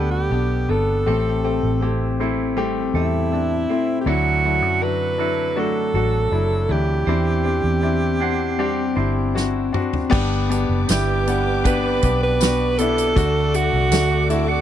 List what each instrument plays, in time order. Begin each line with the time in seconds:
Already playing: fingered electric bass D2, grand piano G2 B3 D4 G4 A4 F#5, clean electric guitar G3 D4 G4 B4, alto saxophone G4
0.11 alto saxophone G4
0.31 fingered electric bass B1, grand piano B3 D4 G4, clean electric guitar G4
0.69 fingered electric bass G1, grand piano B3 D4 A4, clean electric guitar D4, alto saxophone A4
1.06 fingered electric bass A1, grand piano A2 A3 C4 G4, clean electric guitar A2 A4
1.44 grand piano A3 C4 G4, clean electric guitar C4
1.63 fingered electric bass A1
1.81 grand piano A3 C4 G4, clean electric guitar E4
2.20 grand piano A3 C4 E4, clean electric guitar C4 E4 A4
2.56 clean electric guitar G3, grand piano A3 C4 G4
2.94 fingered electric bass E2, grand piano A3 C4 G4, alto saxophone E4, clean electric guitar A4
3.32 grand piano A3 C4 D4, clean electric guitar E4
3.69 grand piano A3 C4 E4, clean electric guitar C4
4.01 alto saxophone G4
4.06 fingered electric bass D2, grand piano D3 F#3 D4 E4, clean electric guitar D3 A4, alto saxophone F#4
4.44 grand piano F#3 D4 E4, clean electric guitar E4
4.62 fingered electric bass F#2
4.81 grand piano F#3 D4 F#4, clean electric guitar F#4, alto saxophone B4
5.18 grand piano F#3 D4 E4, clean electric guitar E4 F#4 A4
5.56 grand piano F#3 D4 F#4, clean electric guitar A3, alto saxophone A4
5.94 fingered electric bass A1, grand piano F#3 D4 F#4, clean electric guitar A4
6.31 fingered electric bass F#1, grand piano F#3 D4 E4
6.69 fingered electric bass D2, grand piano E3 D4 E4, clean electric guitar E4, alto saxophone G4
7.06 fingered electric bass E2, clean electric guitar E3 C5, grand piano E3 C4 D4 E4
7.44 grand piano C4 D4 G4, clean electric guitar D4
7.64 fingered electric bass E2
7.82 grand piano C4 D4 E4, clean electric guitar E4
8.20 grand piano C4 D4 F#5, clean electric guitar D4 E4 C5
8.58 clean electric guitar G3, grand piano C4 D4 G4
8.96 fingered electric bass G1, grand piano C4 D4 E4, clean electric guitar C5
9.35 grand piano C4 D4 F#4, clean electric guitar E4, snare
9.73 grand piano C4 D4 F#4, clean electric guitar D4, mid tom
9.93 floor tom
10.10 fingered electric bass G1, grand piano G2 B3 D4 G4, clean electric guitar G3, string section B4 D5 D6, kick, crash
10.49 grand piano B3 D4 G4, closed hi-hat
10.69 fingered electric bass F#1
10.88 fingered electric bass G1, grand piano B3 D4 E4, clean electric guitar G4, alto saxophone G4, snare, closed hi-hat, tambourine
11.27 grand piano B3 D4 F#5, closed hi-hat
11.64 grand piano B3 D4 G4, clean electric guitar D4 G4 B4, alto saxophone B4, kick, closed hi-hat
12.02 fingered electric bass B1, grand piano B3 D4 G4, clean electric guitar B4, kick, closed hi-hat
12.23 alto saxophone B4
12.40 grand piano B3 D4 F#4, clean electric guitar D4 G4 B4, snare, closed hi-hat, tambourine
12.78 grand piano B3 D4 E4, alto saxophone A4, closed hi-hat
12.98 closed hi-hat
13.15 fingered electric bass D2, clean electric guitar D3, grand piano D3 A3 D4 F#4, string section A4 F#5 D6, kick, closed hi-hat
13.53 grand piano A3 D4 F#4, alto saxophone F#4, closed hi-hat
13.73 fingered electric bass C2
13.91 fingered electric bass D2, grand piano A3 D4 F#4, clean electric guitar F#4, snare, closed hi-hat, tambourine
14.29 grand piano A3 D4 F#4, alto saxophone E4, closed hi-hat
14.49 alto saxophone F#4